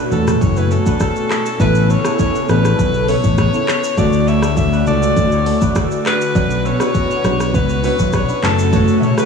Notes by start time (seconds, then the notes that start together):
Already playing: B2 A3 E4 F#4 B4
0.00 D4
0.11 E1 A3 C#4 F#4 A4, shaker
0.27 cross-stick, mid tom, shaker
0.41 F#1 C#5, kick, shaker
0.57 E4 B4 C#5, shaker
0.71 A3 C#4 F#4 A4, shaker
0.86 D4 B4, kick, shaker
1.00 C#4 A4, kick, cross-stick, shaker
1.16 shaker
1.31 E4 C#5, cross-stick, clap, shaker
1.46 shaker
1.60 A1 C#3 B3 C#4 E4 A4 B4, kick, shaker
1.75 shaker
1.90 C#4 A4 C#5, shaker
2.05 B3 C#4 E4 A4 C#5, cross-stick, shaker
2.19 E4 C#5, kick, shaker
2.35 shaker
2.49 A1 B3 C#4 D4 E4 A4 B4, cross-stick, shaker
2.65 cross-stick, shaker
2.79 B1, kick, shaker
2.94 shaker
3.08 B3 C#4 E4 A4 C#5, open hi-hat, shaker
3.24 A1, kick, shaker
3.38 E4 B4, kick, cross-stick, shaker
3.54 B3 C#4 E4 A4, shaker
3.68 cross-stick, clap, shaker
3.84 shaker
3.97 D2 D3 A3 D4 F#4 A4 D5, kick, shaker
4.13 shaker
4.28 E4 C#5 E5, shaker
4.42 A3 D4 F#4 A4, cross-stick, shaker
4.57 E5, kick, shaker
4.73 D4 B4, shaker
4.86 C#2 A3 C#4 D4 F#4 A4 D5, shaker
5.03 shaker
5.17 D2, kick, shaker
5.32 E4 C#5, shaker
5.46 A3 D4 F#4 A4, open hi-hat, shaker
5.61 D4 B4, kick, shaker
5.75 D4 A4, kick, cross-stick, shaker
5.91 shaker
6.06 F#4 B4 D5, cross-stick, clap, shaker
6.21 shaker
6.35 B1 B2 B3 C#4 D4 F#4 B4, kick, shaker
6.50 shaker
6.65 C#4 A4 C#5, shaker
6.80 C#4 D4 E4 F#4 B4 C#5, cross-stick, shaker
6.94 F#4 C#5, kick, shaker
7.11 shaker
7.24 B1 C#4 D4 F#4 B4, cross-stick, shaker
7.40 cross-stick, shaker
7.54 C#2 B4, kick, shaker
7.69 shaker
7.83 C#4 D4 E4 F#4 B4 C#5, open hi-hat, shaker
7.99 B1, kick, shaker
8.13 D4 B4 C#5, kick, cross-stick, shaker
8.29 C#4 D4 F#4 B4, shaker
8.43 F#1 C#3 A3 C#4 F#4 A4, cross-stick, clap, shaker
8.59 shaker
8.72 A3 C#4 F#4 A4 C#5, kick, shaker
8.88 shaker
9.00 E4 C#5 E5, mid tom, shaker
9.18 A3 C#4 F#4 A4 B4, cross-stick, shaker